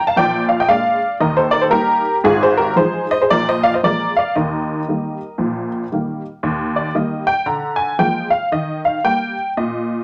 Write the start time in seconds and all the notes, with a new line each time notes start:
0.07 F5 A5
0.16 A#1 A#2 D5 G5
0.49 D5 F5
0.60 D#5 G5
0.68 G#3 A#3 D4 D5 F5
1.20 D#2 D#3 A#4 D#5
1.37 A4 C5
1.51 A#4 D5
1.61 A4 C5
1.70 G3 A#3 D#4 G4 A#4
2.24 G#1 G#2 F4 G#4
2.43 G#4 C5
2.57 G4 A#4
2.76 F3 G#3 D#4 G#4 C5
3.11 C5 D#5
3.21 G#4 C5
3.30 A#1 A#2 A#4 D5
3.49 C5 D#5
3.63 D5 F5
3.74 C5 D#5
3.83 F3 G#3 A#3 A#4 D5
4.17 D5 F5
4.35 D#2 D#3 A#4 D#5
4.88 D#3 G3 A#3
5.38 A#1 A#2
5.92 D#3 G3 A#3
6.43 D#2
6.76 D5
6.95 D#3 G3 A#3 D#5
7.27 G5
7.46 D3 A#5
7.76 G#5
7.99 F3 G#3 A#3 G5
8.30 F5
8.52 D#3 D#5
8.85 F5
9.04 G3 A#3 G5
9.57 A#2 D#5